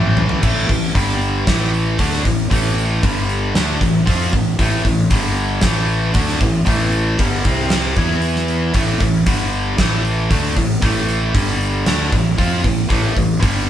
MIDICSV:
0, 0, Header, 1, 4, 480
1, 0, Start_track
1, 0, Key_signature, 0, "minor"
1, 0, Tempo, 519931
1, 403, Time_signature, 4, 2, 24, 8
1, 12645, End_track
2, 0, Start_track
2, 0, Title_t, "Distorted electric guitar"
2, 0, Program_c, 0, 30
2, 0, Note_on_c, 0, 45, 94
2, 0, Note_on_c, 0, 52, 95
2, 0, Note_on_c, 0, 57, 94
2, 380, Note_off_c, 0, 45, 0
2, 388, Note_off_c, 0, 52, 0
2, 391, Note_on_c, 0, 45, 79
2, 396, Note_off_c, 0, 57, 0
2, 399, Note_on_c, 0, 52, 73
2, 407, Note_on_c, 0, 57, 80
2, 630, Note_off_c, 0, 45, 0
2, 630, Note_off_c, 0, 52, 0
2, 638, Note_off_c, 0, 57, 0
2, 641, Note_on_c, 0, 45, 49
2, 641, Note_on_c, 0, 52, 58
2, 834, Note_off_c, 0, 45, 0
2, 834, Note_off_c, 0, 52, 0
2, 874, Note_on_c, 0, 43, 81
2, 883, Note_on_c, 0, 50, 77
2, 883, Note_on_c, 0, 55, 90
2, 1352, Note_off_c, 0, 43, 0
2, 1355, Note_off_c, 0, 50, 0
2, 1356, Note_off_c, 0, 55, 0
2, 1358, Note_on_c, 0, 45, 78
2, 1370, Note_on_c, 0, 52, 85
2, 1371, Note_on_c, 0, 57, 83
2, 1829, Note_off_c, 0, 57, 0
2, 1834, Note_off_c, 0, 45, 0
2, 1837, Note_off_c, 0, 52, 0
2, 1840, Note_on_c, 0, 57, 90
2, 1842, Note_on_c, 0, 50, 90
2, 1851, Note_on_c, 0, 62, 92
2, 2064, Note_off_c, 0, 50, 0
2, 2068, Note_off_c, 0, 57, 0
2, 2068, Note_on_c, 0, 45, 57
2, 2071, Note_on_c, 0, 52, 64
2, 2081, Note_off_c, 0, 62, 0
2, 2268, Note_off_c, 0, 45, 0
2, 2270, Note_off_c, 0, 52, 0
2, 2310, Note_on_c, 0, 45, 82
2, 2317, Note_on_c, 0, 52, 78
2, 2328, Note_on_c, 0, 57, 90
2, 2791, Note_off_c, 0, 45, 0
2, 2792, Note_on_c, 0, 43, 77
2, 2794, Note_off_c, 0, 52, 0
2, 2800, Note_off_c, 0, 57, 0
2, 2805, Note_on_c, 0, 50, 86
2, 2811, Note_on_c, 0, 55, 80
2, 3267, Note_off_c, 0, 50, 0
2, 3271, Note_off_c, 0, 43, 0
2, 3278, Note_off_c, 0, 55, 0
2, 3279, Note_on_c, 0, 50, 76
2, 3282, Note_on_c, 0, 57, 90
2, 3290, Note_on_c, 0, 62, 88
2, 3506, Note_off_c, 0, 50, 0
2, 3507, Note_off_c, 0, 57, 0
2, 3510, Note_on_c, 0, 45, 55
2, 3511, Note_on_c, 0, 52, 62
2, 3521, Note_off_c, 0, 62, 0
2, 3710, Note_off_c, 0, 45, 0
2, 3710, Note_off_c, 0, 52, 0
2, 3748, Note_on_c, 0, 53, 82
2, 3748, Note_on_c, 0, 60, 90
2, 3758, Note_on_c, 0, 65, 91
2, 3989, Note_off_c, 0, 60, 0
2, 3990, Note_off_c, 0, 53, 0
2, 3994, Note_off_c, 0, 65, 0
2, 3995, Note_on_c, 0, 45, 58
2, 3996, Note_on_c, 0, 52, 54
2, 4192, Note_off_c, 0, 45, 0
2, 4193, Note_off_c, 0, 52, 0
2, 4236, Note_on_c, 0, 45, 79
2, 4244, Note_on_c, 0, 52, 77
2, 4250, Note_on_c, 0, 57, 87
2, 4461, Note_off_c, 0, 45, 0
2, 4467, Note_off_c, 0, 52, 0
2, 4473, Note_on_c, 0, 45, 54
2, 4478, Note_on_c, 0, 52, 55
2, 4480, Note_off_c, 0, 57, 0
2, 4671, Note_off_c, 0, 45, 0
2, 4674, Note_off_c, 0, 52, 0
2, 4712, Note_on_c, 0, 43, 86
2, 4718, Note_on_c, 0, 50, 82
2, 4724, Note_on_c, 0, 55, 90
2, 5189, Note_off_c, 0, 50, 0
2, 5191, Note_off_c, 0, 43, 0
2, 5192, Note_on_c, 0, 45, 82
2, 5197, Note_off_c, 0, 55, 0
2, 5202, Note_on_c, 0, 52, 88
2, 5204, Note_on_c, 0, 57, 85
2, 5658, Note_off_c, 0, 45, 0
2, 5661, Note_off_c, 0, 57, 0
2, 5662, Note_on_c, 0, 50, 92
2, 5668, Note_off_c, 0, 52, 0
2, 5672, Note_on_c, 0, 57, 92
2, 5677, Note_on_c, 0, 62, 93
2, 5906, Note_off_c, 0, 50, 0
2, 5911, Note_off_c, 0, 57, 0
2, 5914, Note_off_c, 0, 62, 0
2, 5917, Note_on_c, 0, 45, 58
2, 5921, Note_on_c, 0, 52, 66
2, 6113, Note_off_c, 0, 45, 0
2, 6115, Note_off_c, 0, 52, 0
2, 6140, Note_on_c, 0, 45, 67
2, 6151, Note_on_c, 0, 52, 82
2, 6154, Note_on_c, 0, 57, 82
2, 6625, Note_off_c, 0, 45, 0
2, 6630, Note_off_c, 0, 52, 0
2, 6632, Note_off_c, 0, 57, 0
2, 6634, Note_on_c, 0, 43, 75
2, 6647, Note_on_c, 0, 50, 78
2, 6649, Note_on_c, 0, 55, 92
2, 6871, Note_off_c, 0, 43, 0
2, 6878, Note_off_c, 0, 50, 0
2, 6879, Note_off_c, 0, 55, 0
2, 6888, Note_on_c, 0, 48, 75
2, 6894, Note_on_c, 0, 55, 81
2, 6895, Note_on_c, 0, 60, 90
2, 7350, Note_off_c, 0, 48, 0
2, 7354, Note_on_c, 0, 52, 75
2, 7361, Note_off_c, 0, 55, 0
2, 7361, Note_off_c, 0, 60, 0
2, 7365, Note_on_c, 0, 64, 93
2, 7370, Note_on_c, 0, 59, 75
2, 8066, Note_off_c, 0, 52, 0
2, 8070, Note_on_c, 0, 45, 87
2, 8074, Note_off_c, 0, 59, 0
2, 8076, Note_off_c, 0, 64, 0
2, 8078, Note_on_c, 0, 52, 83
2, 8085, Note_on_c, 0, 57, 96
2, 8299, Note_off_c, 0, 45, 0
2, 8307, Note_off_c, 0, 52, 0
2, 8310, Note_on_c, 0, 45, 56
2, 8316, Note_off_c, 0, 57, 0
2, 8318, Note_on_c, 0, 52, 56
2, 8508, Note_off_c, 0, 45, 0
2, 8512, Note_off_c, 0, 52, 0
2, 8552, Note_on_c, 0, 43, 76
2, 8554, Note_on_c, 0, 50, 84
2, 8560, Note_on_c, 0, 55, 90
2, 9021, Note_off_c, 0, 50, 0
2, 9024, Note_on_c, 0, 45, 77
2, 9030, Note_off_c, 0, 43, 0
2, 9030, Note_off_c, 0, 55, 0
2, 9034, Note_on_c, 0, 52, 81
2, 9041, Note_on_c, 0, 57, 84
2, 9505, Note_off_c, 0, 45, 0
2, 9510, Note_off_c, 0, 52, 0
2, 9511, Note_off_c, 0, 57, 0
2, 9516, Note_on_c, 0, 50, 86
2, 9522, Note_on_c, 0, 57, 87
2, 9525, Note_on_c, 0, 62, 85
2, 9751, Note_off_c, 0, 50, 0
2, 9754, Note_off_c, 0, 57, 0
2, 9756, Note_off_c, 0, 62, 0
2, 9763, Note_on_c, 0, 45, 54
2, 9765, Note_on_c, 0, 52, 69
2, 9954, Note_off_c, 0, 45, 0
2, 9955, Note_off_c, 0, 52, 0
2, 9989, Note_on_c, 0, 45, 73
2, 9997, Note_on_c, 0, 52, 72
2, 10001, Note_on_c, 0, 57, 99
2, 10467, Note_off_c, 0, 45, 0
2, 10468, Note_on_c, 0, 43, 78
2, 10471, Note_off_c, 0, 52, 0
2, 10473, Note_off_c, 0, 57, 0
2, 10474, Note_on_c, 0, 50, 86
2, 10488, Note_on_c, 0, 55, 90
2, 10944, Note_off_c, 0, 50, 0
2, 10947, Note_off_c, 0, 43, 0
2, 10953, Note_off_c, 0, 55, 0
2, 10955, Note_on_c, 0, 50, 74
2, 10957, Note_on_c, 0, 57, 88
2, 10964, Note_on_c, 0, 62, 93
2, 11180, Note_off_c, 0, 50, 0
2, 11184, Note_on_c, 0, 45, 59
2, 11190, Note_off_c, 0, 57, 0
2, 11194, Note_on_c, 0, 52, 69
2, 11195, Note_off_c, 0, 62, 0
2, 11384, Note_off_c, 0, 45, 0
2, 11389, Note_off_c, 0, 52, 0
2, 11427, Note_on_c, 0, 53, 84
2, 11432, Note_on_c, 0, 60, 78
2, 11442, Note_on_c, 0, 65, 90
2, 11665, Note_off_c, 0, 60, 0
2, 11666, Note_off_c, 0, 53, 0
2, 11669, Note_on_c, 0, 52, 66
2, 11671, Note_on_c, 0, 45, 60
2, 11673, Note_off_c, 0, 65, 0
2, 11866, Note_off_c, 0, 52, 0
2, 11867, Note_off_c, 0, 45, 0
2, 11900, Note_on_c, 0, 45, 82
2, 11905, Note_on_c, 0, 52, 87
2, 11913, Note_on_c, 0, 57, 80
2, 12130, Note_off_c, 0, 52, 0
2, 12131, Note_off_c, 0, 45, 0
2, 12141, Note_on_c, 0, 52, 60
2, 12143, Note_on_c, 0, 45, 54
2, 12149, Note_off_c, 0, 57, 0
2, 12342, Note_off_c, 0, 52, 0
2, 12343, Note_off_c, 0, 45, 0
2, 12371, Note_on_c, 0, 43, 84
2, 12377, Note_on_c, 0, 50, 83
2, 12388, Note_on_c, 0, 55, 95
2, 12645, Note_off_c, 0, 43, 0
2, 12645, Note_off_c, 0, 50, 0
2, 12645, Note_off_c, 0, 55, 0
2, 12645, End_track
3, 0, Start_track
3, 0, Title_t, "Fingered electric bass"
3, 0, Program_c, 1, 33
3, 0, Note_on_c, 1, 33, 93
3, 368, Note_off_c, 1, 33, 0
3, 398, Note_on_c, 1, 33, 82
3, 624, Note_off_c, 1, 33, 0
3, 632, Note_on_c, 1, 33, 67
3, 861, Note_off_c, 1, 33, 0
3, 877, Note_on_c, 1, 31, 83
3, 1327, Note_off_c, 1, 31, 0
3, 1355, Note_on_c, 1, 33, 84
3, 1806, Note_off_c, 1, 33, 0
3, 1834, Note_on_c, 1, 38, 85
3, 2062, Note_off_c, 1, 38, 0
3, 2081, Note_on_c, 1, 33, 68
3, 2306, Note_off_c, 1, 33, 0
3, 2317, Note_on_c, 1, 33, 83
3, 2767, Note_off_c, 1, 33, 0
3, 2797, Note_on_c, 1, 31, 84
3, 3247, Note_off_c, 1, 31, 0
3, 3272, Note_on_c, 1, 38, 94
3, 3502, Note_off_c, 1, 38, 0
3, 3515, Note_on_c, 1, 33, 69
3, 3743, Note_off_c, 1, 33, 0
3, 3754, Note_on_c, 1, 41, 86
3, 3983, Note_off_c, 1, 41, 0
3, 3991, Note_on_c, 1, 33, 70
3, 4221, Note_off_c, 1, 33, 0
3, 4232, Note_on_c, 1, 33, 83
3, 4461, Note_off_c, 1, 33, 0
3, 4474, Note_on_c, 1, 33, 71
3, 4702, Note_off_c, 1, 33, 0
3, 4711, Note_on_c, 1, 31, 88
3, 5164, Note_off_c, 1, 31, 0
3, 5189, Note_on_c, 1, 33, 85
3, 5643, Note_off_c, 1, 33, 0
3, 5673, Note_on_c, 1, 38, 80
3, 5901, Note_off_c, 1, 38, 0
3, 5916, Note_on_c, 1, 33, 71
3, 6143, Note_off_c, 1, 33, 0
3, 6154, Note_on_c, 1, 33, 86
3, 6605, Note_off_c, 1, 33, 0
3, 6631, Note_on_c, 1, 31, 88
3, 6860, Note_off_c, 1, 31, 0
3, 6873, Note_on_c, 1, 36, 92
3, 7324, Note_off_c, 1, 36, 0
3, 7351, Note_on_c, 1, 40, 84
3, 8040, Note_off_c, 1, 40, 0
3, 8068, Note_on_c, 1, 33, 89
3, 8298, Note_off_c, 1, 33, 0
3, 8315, Note_on_c, 1, 33, 70
3, 8541, Note_off_c, 1, 33, 0
3, 8548, Note_on_c, 1, 31, 88
3, 9000, Note_off_c, 1, 31, 0
3, 9029, Note_on_c, 1, 33, 86
3, 9481, Note_off_c, 1, 33, 0
3, 9513, Note_on_c, 1, 38, 81
3, 9740, Note_off_c, 1, 38, 0
3, 9751, Note_on_c, 1, 33, 72
3, 9978, Note_off_c, 1, 33, 0
3, 9985, Note_on_c, 1, 33, 90
3, 10439, Note_off_c, 1, 33, 0
3, 10473, Note_on_c, 1, 31, 87
3, 10923, Note_off_c, 1, 31, 0
3, 10951, Note_on_c, 1, 38, 85
3, 11178, Note_off_c, 1, 38, 0
3, 11193, Note_on_c, 1, 33, 72
3, 11419, Note_off_c, 1, 33, 0
3, 11435, Note_on_c, 1, 41, 82
3, 11660, Note_off_c, 1, 41, 0
3, 11670, Note_on_c, 1, 33, 73
3, 11897, Note_off_c, 1, 33, 0
3, 11907, Note_on_c, 1, 33, 83
3, 12136, Note_off_c, 1, 33, 0
3, 12149, Note_on_c, 1, 33, 74
3, 12377, Note_off_c, 1, 33, 0
3, 12393, Note_on_c, 1, 31, 85
3, 12645, Note_off_c, 1, 31, 0
3, 12645, End_track
4, 0, Start_track
4, 0, Title_t, "Drums"
4, 156, Note_on_c, 9, 43, 89
4, 248, Note_off_c, 9, 43, 0
4, 271, Note_on_c, 9, 43, 84
4, 363, Note_off_c, 9, 43, 0
4, 395, Note_on_c, 9, 49, 86
4, 398, Note_on_c, 9, 36, 88
4, 487, Note_off_c, 9, 49, 0
4, 491, Note_off_c, 9, 36, 0
4, 640, Note_on_c, 9, 36, 77
4, 641, Note_on_c, 9, 46, 45
4, 732, Note_off_c, 9, 36, 0
4, 734, Note_off_c, 9, 46, 0
4, 879, Note_on_c, 9, 36, 92
4, 884, Note_on_c, 9, 46, 61
4, 971, Note_off_c, 9, 36, 0
4, 976, Note_off_c, 9, 46, 0
4, 1118, Note_on_c, 9, 46, 44
4, 1210, Note_off_c, 9, 46, 0
4, 1358, Note_on_c, 9, 46, 68
4, 1360, Note_on_c, 9, 36, 92
4, 1360, Note_on_c, 9, 38, 96
4, 1450, Note_off_c, 9, 46, 0
4, 1452, Note_off_c, 9, 36, 0
4, 1452, Note_off_c, 9, 38, 0
4, 1605, Note_on_c, 9, 46, 41
4, 1697, Note_off_c, 9, 46, 0
4, 1834, Note_on_c, 9, 46, 67
4, 1838, Note_on_c, 9, 36, 84
4, 1927, Note_off_c, 9, 46, 0
4, 1930, Note_off_c, 9, 36, 0
4, 1963, Note_on_c, 9, 38, 28
4, 2055, Note_off_c, 9, 38, 0
4, 2079, Note_on_c, 9, 36, 81
4, 2085, Note_on_c, 9, 46, 44
4, 2172, Note_off_c, 9, 36, 0
4, 2177, Note_off_c, 9, 46, 0
4, 2320, Note_on_c, 9, 36, 93
4, 2326, Note_on_c, 9, 46, 63
4, 2412, Note_off_c, 9, 36, 0
4, 2418, Note_off_c, 9, 46, 0
4, 2567, Note_on_c, 9, 46, 50
4, 2660, Note_off_c, 9, 46, 0
4, 2800, Note_on_c, 9, 36, 93
4, 2805, Note_on_c, 9, 46, 61
4, 2892, Note_off_c, 9, 36, 0
4, 2897, Note_off_c, 9, 46, 0
4, 3040, Note_on_c, 9, 46, 44
4, 3132, Note_off_c, 9, 46, 0
4, 3280, Note_on_c, 9, 46, 57
4, 3281, Note_on_c, 9, 38, 106
4, 3372, Note_off_c, 9, 46, 0
4, 3374, Note_off_c, 9, 38, 0
4, 3519, Note_on_c, 9, 36, 78
4, 3524, Note_on_c, 9, 46, 46
4, 3611, Note_off_c, 9, 36, 0
4, 3617, Note_off_c, 9, 46, 0
4, 3760, Note_on_c, 9, 36, 94
4, 3761, Note_on_c, 9, 46, 62
4, 3852, Note_off_c, 9, 36, 0
4, 3853, Note_off_c, 9, 46, 0
4, 3995, Note_on_c, 9, 46, 42
4, 3998, Note_on_c, 9, 36, 84
4, 4087, Note_off_c, 9, 46, 0
4, 4090, Note_off_c, 9, 36, 0
4, 4238, Note_on_c, 9, 36, 88
4, 4238, Note_on_c, 9, 46, 58
4, 4330, Note_off_c, 9, 36, 0
4, 4330, Note_off_c, 9, 46, 0
4, 4476, Note_on_c, 9, 46, 45
4, 4477, Note_on_c, 9, 36, 78
4, 4568, Note_off_c, 9, 46, 0
4, 4569, Note_off_c, 9, 36, 0
4, 4713, Note_on_c, 9, 46, 62
4, 4716, Note_on_c, 9, 36, 100
4, 4806, Note_off_c, 9, 46, 0
4, 4809, Note_off_c, 9, 36, 0
4, 4948, Note_on_c, 9, 46, 43
4, 5040, Note_off_c, 9, 46, 0
4, 5182, Note_on_c, 9, 46, 63
4, 5184, Note_on_c, 9, 38, 101
4, 5193, Note_on_c, 9, 36, 94
4, 5274, Note_off_c, 9, 46, 0
4, 5276, Note_off_c, 9, 38, 0
4, 5286, Note_off_c, 9, 36, 0
4, 5429, Note_on_c, 9, 46, 46
4, 5521, Note_off_c, 9, 46, 0
4, 5668, Note_on_c, 9, 46, 68
4, 5676, Note_on_c, 9, 36, 96
4, 5761, Note_off_c, 9, 46, 0
4, 5769, Note_off_c, 9, 36, 0
4, 5796, Note_on_c, 9, 38, 27
4, 5889, Note_off_c, 9, 38, 0
4, 5913, Note_on_c, 9, 46, 48
4, 5916, Note_on_c, 9, 36, 85
4, 6005, Note_off_c, 9, 46, 0
4, 6008, Note_off_c, 9, 36, 0
4, 6149, Note_on_c, 9, 46, 59
4, 6157, Note_on_c, 9, 36, 82
4, 6241, Note_off_c, 9, 46, 0
4, 6249, Note_off_c, 9, 36, 0
4, 6389, Note_on_c, 9, 46, 50
4, 6482, Note_off_c, 9, 46, 0
4, 6634, Note_on_c, 9, 46, 66
4, 6639, Note_on_c, 9, 36, 98
4, 6727, Note_off_c, 9, 46, 0
4, 6731, Note_off_c, 9, 36, 0
4, 6874, Note_on_c, 9, 46, 46
4, 6878, Note_on_c, 9, 36, 93
4, 6967, Note_off_c, 9, 46, 0
4, 6971, Note_off_c, 9, 36, 0
4, 7110, Note_on_c, 9, 46, 57
4, 7112, Note_on_c, 9, 38, 99
4, 7202, Note_off_c, 9, 46, 0
4, 7204, Note_off_c, 9, 38, 0
4, 7347, Note_on_c, 9, 46, 42
4, 7355, Note_on_c, 9, 36, 83
4, 7439, Note_off_c, 9, 46, 0
4, 7447, Note_off_c, 9, 36, 0
4, 7585, Note_on_c, 9, 46, 55
4, 7678, Note_off_c, 9, 46, 0
4, 7717, Note_on_c, 9, 38, 29
4, 7809, Note_off_c, 9, 38, 0
4, 7831, Note_on_c, 9, 46, 45
4, 7923, Note_off_c, 9, 46, 0
4, 8067, Note_on_c, 9, 46, 61
4, 8073, Note_on_c, 9, 36, 91
4, 8159, Note_off_c, 9, 46, 0
4, 8165, Note_off_c, 9, 36, 0
4, 8308, Note_on_c, 9, 46, 45
4, 8314, Note_on_c, 9, 36, 82
4, 8400, Note_off_c, 9, 46, 0
4, 8406, Note_off_c, 9, 36, 0
4, 8550, Note_on_c, 9, 46, 64
4, 8555, Note_on_c, 9, 36, 103
4, 8643, Note_off_c, 9, 46, 0
4, 8647, Note_off_c, 9, 36, 0
4, 8793, Note_on_c, 9, 46, 40
4, 8886, Note_off_c, 9, 46, 0
4, 9031, Note_on_c, 9, 46, 62
4, 9033, Note_on_c, 9, 38, 93
4, 9034, Note_on_c, 9, 36, 96
4, 9123, Note_off_c, 9, 46, 0
4, 9125, Note_off_c, 9, 38, 0
4, 9126, Note_off_c, 9, 36, 0
4, 9276, Note_on_c, 9, 46, 47
4, 9368, Note_off_c, 9, 46, 0
4, 9515, Note_on_c, 9, 36, 90
4, 9517, Note_on_c, 9, 46, 65
4, 9607, Note_off_c, 9, 36, 0
4, 9609, Note_off_c, 9, 46, 0
4, 9754, Note_on_c, 9, 36, 74
4, 9754, Note_on_c, 9, 46, 46
4, 9846, Note_off_c, 9, 46, 0
4, 9847, Note_off_c, 9, 36, 0
4, 9989, Note_on_c, 9, 46, 57
4, 9993, Note_on_c, 9, 36, 88
4, 10082, Note_off_c, 9, 46, 0
4, 10085, Note_off_c, 9, 36, 0
4, 10234, Note_on_c, 9, 46, 52
4, 10326, Note_off_c, 9, 46, 0
4, 10475, Note_on_c, 9, 36, 105
4, 10476, Note_on_c, 9, 46, 69
4, 10567, Note_off_c, 9, 36, 0
4, 10569, Note_off_c, 9, 46, 0
4, 10715, Note_on_c, 9, 46, 46
4, 10808, Note_off_c, 9, 46, 0
4, 10952, Note_on_c, 9, 46, 68
4, 10954, Note_on_c, 9, 38, 93
4, 11044, Note_off_c, 9, 46, 0
4, 11046, Note_off_c, 9, 38, 0
4, 11193, Note_on_c, 9, 36, 79
4, 11194, Note_on_c, 9, 46, 43
4, 11285, Note_off_c, 9, 36, 0
4, 11286, Note_off_c, 9, 46, 0
4, 11434, Note_on_c, 9, 36, 86
4, 11434, Note_on_c, 9, 46, 62
4, 11526, Note_off_c, 9, 36, 0
4, 11527, Note_off_c, 9, 46, 0
4, 11672, Note_on_c, 9, 36, 80
4, 11674, Note_on_c, 9, 46, 47
4, 11764, Note_off_c, 9, 36, 0
4, 11766, Note_off_c, 9, 46, 0
4, 11909, Note_on_c, 9, 46, 56
4, 11912, Note_on_c, 9, 36, 89
4, 12001, Note_off_c, 9, 46, 0
4, 12004, Note_off_c, 9, 36, 0
4, 12154, Note_on_c, 9, 36, 73
4, 12154, Note_on_c, 9, 46, 41
4, 12246, Note_off_c, 9, 46, 0
4, 12247, Note_off_c, 9, 36, 0
4, 12395, Note_on_c, 9, 36, 94
4, 12399, Note_on_c, 9, 46, 64
4, 12487, Note_off_c, 9, 36, 0
4, 12491, Note_off_c, 9, 46, 0
4, 12645, End_track
0, 0, End_of_file